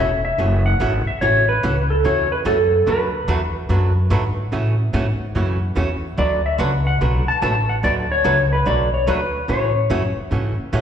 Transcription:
Already playing: upright bass E1, electric slide guitar E5
0.25 electric slide guitar E5
0.38 upright bass F#1, hollow-body jazz guitar C#3 E3 A3 C#4 F#4
0.66 electric slide guitar F#5
0.80 upright bass G#1, hollow-body jazz guitar C#3 E3 A3 C#4 F#4
1.07 electric slide guitar E5, muted upright bass stroke
1.21 upright bass A1, hollow-body jazz guitar C#3 E3 A3 C#4 F#4, electric slide guitar C#5
1.49 electric slide guitar B4
1.63 upright bass C#2, hollow-body jazz guitar C#3 E3 A3 C#4 F#4
1.90 electric slide guitar A4
2.04 upright bass E2, hollow-body jazz guitar C#3 E3 A3 C#4 F#4, electric slide guitar C#5
2.32 electric slide guitar B4
2.45 upright bass F#2, hollow-body jazz guitar C#3 E3 A3 C#4 F#4, electric slide guitar A4
2.87 upright bass D2, hollow-body jazz guitar D3 F#3 A3 D4 F#4 B4, electric slide guitar B4
3.28 upright bass E2, hollow-body jazz guitar D3 F#3 A3 D4 F#4 B4
3.69 upright bass F#2, hollow-body jazz guitar D3 F#3 A3 D4 F#4 B4
4.10 upright bass G#2, hollow-body jazz guitar D3 F#3 A3 D4 F#4 B4
4.52 upright bass A2, hollow-body jazz guitar C#3 E3 A3 C#4 F#4
4.93 upright bass G#2, hollow-body jazz guitar C#3 E3 A3 C#4 F#4
5.35 upright bass F#2, hollow-body jazz guitar C#3 E3 A3 C#4 F#4
5.76 upright bass E2, hollow-body jazz guitar C#3 E3 A3 C#4 F#4
6.17 upright bass D2, hollow-body jazz guitar D3 F#3 A3 D4 F#4 B4, electric slide guitar D5
6.46 electric slide guitar E5
6.58 upright bass C#2, hollow-body jazz guitar D3 F#3 A3 D4 F#4 B4, electric slide guitar F#5
6.87 electric slide guitar F#5
7.01 upright bass B1, hollow-body jazz guitar D3 F#3 A3 D4 F#4 B4
7.28 electric slide guitar A5, muted upright bass stroke
7.42 upright bass A1, hollow-body jazz guitar D3 F#3 A3 D4 F#4 B4, electric slide guitar A5
7.69 electric slide guitar F#5
7.83 upright bass D2, hollow-body jazz guitar D3 F#3 A3 D4 F#4 B4, electric slide guitar D5
8.12 electric slide guitar C#5
8.24 upright bass C#2, hollow-body jazz guitar D3 F#3 A3 D4 F#4 B4
8.53 electric slide guitar B4
8.66 upright bass B1, hollow-body jazz guitar D3 F#3 A3 D4 F#4 B4, electric slide guitar D5
8.94 electric slide guitar C#5
9.07 upright bass D2, hollow-body jazz guitar D3 F#3 A3 D4 F#4 B4, electric slide guitar B4
9.48 upright bass A2, hollow-body jazz guitar C#3 E3 A3 C#4 F#4, electric slide guitar C#5
9.90 upright bass F#2, hollow-body jazz guitar C#3 E3 A3 C#4 F#4
10.17 muted upright bass stroke
10.31 upright bass G#2, hollow-body jazz guitar C#3 E3 A3 C#4 F#4
10.58 muted upright bass stroke
10.73 upright bass A2, hollow-body jazz guitar C#3 E3 A3 C#4 F#4

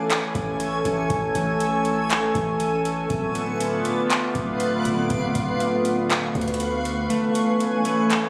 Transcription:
Already playing: ambient pad E3 A3 C#4 A4 G#5, synth texture A4 G#5 C#6
0.10 clap, closed hi-hat
0.35 808-style bass A1, kick, closed hi-hat
0.60 closed hi-hat
0.85 808-style bass A1, closed hi-hat
1.10 808-style bass A1, kick, closed hi-hat
1.35 808-style bass A1, closed hi-hat
1.60 closed hi-hat
1.85 closed hi-hat
2.10 clap, closed hi-hat
2.35 808-style bass A1, kick, closed hi-hat
2.60 closed hi-hat
2.85 closed hi-hat
3.10 808-style bass D1, ambient pad D3 B3 F4 B4, synth texture B4 F5 D6, kick, closed hi-hat
3.35 closed hi-hat
3.60 closed hi-hat
3.85 closed hi-hat
4.10 clap, closed hi-hat
4.35 808-style bass D1, kick, closed hi-hat
4.60 closed hi-hat
4.85 808-style bass D1, closed hi-hat
5.10 808-style bass D1, synth texture C#6, kick, closed hi-hat
5.35 808-style bass D1, kick, closed hi-hat
5.60 closed hi-hat
5.85 closed hi-hat
6.10 clap, closed hi-hat
6.35 808-style bass D2, kick, closed hi-hat
6.41 closed hi-hat
6.48 closed hi-hat
6.54 closed hi-hat
6.60 closed hi-hat
6.85 closed hi-hat
7.10 ambient pad E3 A3 C#4 G#5, clean electric guitar A3, synth texture A4 G#5, closed hi-hat
7.35 closed hi-hat
7.60 closed hi-hat
7.85 clean electric guitar A3, closed hi-hat
8.10 clap, closed hi-hat

